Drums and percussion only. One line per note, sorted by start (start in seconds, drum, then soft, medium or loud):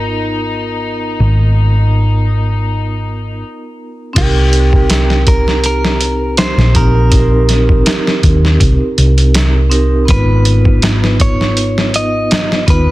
4.16 kick loud
4.16 closed hi-hat medium
4.16 crash medium
4.53 closed hi-hat medium
4.73 kick medium
4.90 snare loud
4.90 closed hi-hat medium
5.10 snare medium
5.27 kick medium
5.27 closed hi-hat medium
5.48 snare soft
5.64 closed hi-hat medium
5.85 snare medium
6.01 closed hi-hat medium
6.37 snare loud
6.37 closed hi-hat medium
6.59 snare medium
6.75 kick medium
6.75 closed hi-hat medium
7.12 kick loud
7.12 closed hi-hat medium
7.49 snare soft
7.49 closed hi-hat medium
7.69 kick medium
7.86 snare loud
7.86 closed hi-hat medium
8.07 snare medium
8.23 kick medium
8.23 closed hi-hat medium
8.45 snare soft
8.60 kick loud
8.60 closed hi-hat medium
8.98 closed hi-hat medium
9.18 closed hi-hat soft
9.34 snare loud
9.34 closed hi-hat medium
9.71 closed hi-hat medium
10.08 kick loud
10.08 closed hi-hat medium
10.45 closed hi-hat medium
10.65 kick loud
10.82 snare loud
10.82 closed hi-hat medium
11.04 snare soft
11.20 kick medium
11.20 closed hi-hat medium
11.41 snare soft
11.57 closed hi-hat medium
11.78 snare medium
11.94 closed hi-hat medium
12.31 snare loud
12.31 closed hi-hat medium
12.52 snare medium
12.68 kick medium
12.68 closed hi-hat medium